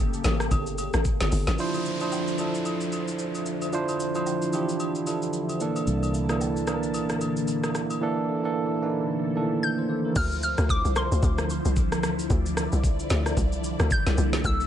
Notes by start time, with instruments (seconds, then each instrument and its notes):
Already playing: log drum bass G1, string machine C#3 A#3 G4 A4
0.13 shaker
0.24 log drum bass A1, snare, high agogo, shaker
0.40 cross-stick, shaker
0.51 log drum bass G1, kick, high agogo, shaker
0.66 shaker
0.78 high agogo, shaker
0.94 log drum bass A1, cross-stick, shaker
1.05 kick, shaker
1.21 log drum bass G1, snare, high agogo, shaker
1.32 log drum bass G1, open hi-hat, shaker
1.47 log drum bass A1, snare, high agogo, shaker
1.58 string machine D3 F3 E4 C5, tine electric piano F3 D4 E4 C5, downlifter, shaker
1.74 high agogo, shaker
1.86 shaker
2.00 tine electric piano F3 D4 E4 C5, high agogo, shaker
2.12 low woodblock, shaker
2.28 shaker
2.38 tine electric piano F3 D4 E4 A4, high agogo, shaker
2.55 shaker
2.65 high agogo, shaker
2.81 shaker
2.92 high agogo, shaker
3.08 shaker
3.19 shaker
3.35 high agogo, shaker
3.46 shaker
3.62 high agogo, shaker
3.73 tine electric piano F3 D4 E4 C5, shaker
3.88 high agogo, shaker
4.00 shaker
4.15 tine electric piano F3 D4 E4 C5, high agogo, shaker
4.26 low woodblock, shaker
4.42 shaker
4.53 tine electric piano E3 D4 E4 G4, high agogo, shaker
4.60 tine electric piano F3
4.69 shaker
4.80 high agogo, shaker
4.95 shaker
5.07 tine electric piano F3 D4 E4 A4, high agogo, shaker
5.22 shaker
5.33 shaker
5.49 high agogo, shaker
5.60 tine electric piano E3 A#3 D4 A4, string machine A#3 A5, shaker
5.76 high agogo, shaker
5.87 fingered electric bass C2, shaker
6.03 high agogo, shaker
6.14 shaker
6.29 tine electric piano E3 A#3 D4 A4, cross-stick, high agogo, shaker
6.41 low woodblock, shaker
6.56 shaker
6.67 tine electric piano E3 A#3 D4 A#4, cross-stick, high agogo, shaker
6.83 shaker
6.94 high agogo, shaker
7.09 cross-stick, shaker
7.21 high agogo, shaker
7.37 shaker
7.48 shaker
7.64 cross-stick, high agogo, shaker
7.75 string machine A4, cross-stick, shaker
7.90 high agogo, shaker
8.01 tine electric piano E3 A#3 D4 A4
8.44 tine electric piano E3 A#3 D4 A4
8.82 tine electric piano E3 A#3 D4 D#4
8.90 tine electric piano E4
9.35 tine electric piano D#3 A#3 D4 A4
9.42 tine electric piano E3
9.63 synth pluck G6
9.78 tine electric piano C5
9.89 tine electric piano D5
10.05 tine electric piano A#4
10.16 log drum bass D2, string machine D3 F3 E4 C5, synth pluck F6, kick, crash, shaker
10.32 shaker
10.43 synth pluck F6, shaker
10.58 log drum bass D2, cross-stick, shaker
10.69 synth pluck D6, kick, shaker
10.85 log drum bass C2, shaker
10.96 synth pluck C6, cross-stick, shaker
11.12 log drum bass D2, shaker
11.23 log drum bass D2, kick, shaker
11.38 cross-stick, shaker
11.50 shaker
11.65 log drum bass C2, shaker
11.76 kick, shaker
11.92 cross-stick, shaker
12.03 log drum bass D2, cross-stick, shaker
12.19 shaker
12.30 log drum bass D2, string machine D5, kick, shaker
12.46 shaker
12.57 cross-stick, shaker
12.72 log drum bass C2, shaker
12.84 kick, shaker
12.99 shaker
13.10 log drum bass D2, snare, shaker
13.26 cross-stick, shaker
13.37 log drum bass C2, kick, shaker
13.52 shaker
13.64 shaker
13.80 log drum bass D2, cross-stick, shaker
13.91 synth pluck G6, kick, shaker
14.06 log drum bass C2, snare, shaker
14.18 log drum bass C2, string machine A#3 A4, shaker
14.33 snare, shaker
14.44 log drum bass C2, synth pluck E6, kick, shaker
14.60 shaker